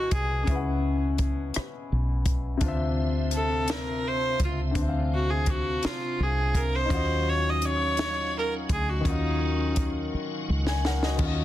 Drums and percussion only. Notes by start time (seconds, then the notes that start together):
0.11 kick, closed hi-hat
0.47 kick, closed hi-hat
1.18 kick, closed hi-hat
1.54 cross-stick, closed hi-hat
2.26 kick, closed hi-hat
2.61 kick, closed hi-hat
3.31 closed hi-hat
3.68 snare, closed hi-hat
4.40 kick, closed hi-hat
4.75 kick, closed hi-hat
5.46 kick, closed hi-hat
5.83 snare, closed hi-hat
6.55 kick, closed hi-hat
6.90 kick, closed hi-hat
7.62 closed hi-hat
7.97 snare, closed hi-hat
8.69 kick, closed hi-hat
9.05 kick, closed hi-hat
9.76 kick, closed hi-hat
10.67 snare
10.85 snare
11.03 snare
11.19 kick, crash